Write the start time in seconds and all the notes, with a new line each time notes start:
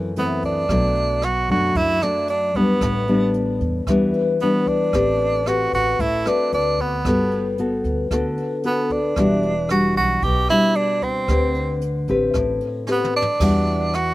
Already playing: F#2 E3 A3 C4
0.16 E3 A3 B3 C4, closed hi-hat
0.42 D4, kick, closed hi-hat
0.69 B1 B2 F#3 A3 D4, kick, cross-stick, closed hi-hat
0.95 closed hi-hat
1.22 F#4, cross-stick, closed hi-hat
1.49 F#2 F#3 A3 D4 F#4, kick, closed hi-hat
1.75 F#2 E4, kick, closed hi-hat
2.02 F#3 A3 D4, cross-stick, closed hi-hat
2.28 D4, closed hi-hat
2.55 G3 B3 D4, kick, closed hi-hat
2.81 A1 A2, kick, cross-stick, closed hi-hat
3.07 G3 B3 D4, closed hi-hat
3.34 closed hi-hat
3.61 E2, kick, closed hi-hat
3.87 E2 E3 G3 B3 D4, kick, cross-stick, closed hi-hat
4.13 closed hi-hat
4.40 G3 B3 D4, closed hi-hat
4.67 D4, kick, closed hi-hat
4.93 A1 A3 C4 G4 B4, kick, cross-stick, closed hi-hat
5.20 closed hi-hat
5.46 C4 F#4 G4 B4, cross-stick, closed hi-hat
5.73 A1 F#4, kick, closed hi-hat
5.99 A1 A3 E4, kick, closed hi-hat
6.26 C4 D4 F#4 B4, cross-stick, closed hi-hat
6.52 D2 D4, closed hi-hat
6.78 B3, kick, closed hi-hat
7.05 G1 G3 B3 F#4 A4, kick, cross-stick, closed hi-hat
7.31 closed hi-hat
7.58 B3 F#4 A4, closed hi-hat
7.84 D2, kick, closed hi-hat
8.11 D2 D3 B3 F#4 A4, kick, cross-stick, closed hi-hat
8.37 closed hi-hat
8.63 B3 F#4 A4, closed hi-hat
8.90 D4, kick, closed hi-hat
9.16 E1 E3 G3 D4 F#4, kick, cross-stick, closed hi-hat
9.43 closed hi-hat
9.69 G3 D4 F#4, cross-stick, closed hi-hat
9.96 B1 F#4, kick, closed hi-hat
10.22 B1 B2 G4, kick, closed hi-hat
10.48 G3 D4 E4 F#4, cross-stick, closed hi-hat
10.75 D4, closed hi-hat
11.02 C4, kick, closed hi-hat
11.28 D2 D3 C4 G4 B4, kick, cross-stick, closed hi-hat
11.55 closed hi-hat
11.81 closed hi-hat
12.08 A1 C4 G4 B4, kick, closed hi-hat
12.34 A1 A2, kick, cross-stick, closed hi-hat
12.61 closed hi-hat
12.87 C4 G4 B4, snare
12.91 B3
13.04 mid tom
13.16 D4
13.22 floor tom
13.39 E2 E3 G3 D4 F#4 B4 D5, kick, cross-stick, closed hi-hat, crash
13.44 F#5
13.67 closed hi-hat
13.93 F#4, cross-stick, closed hi-hat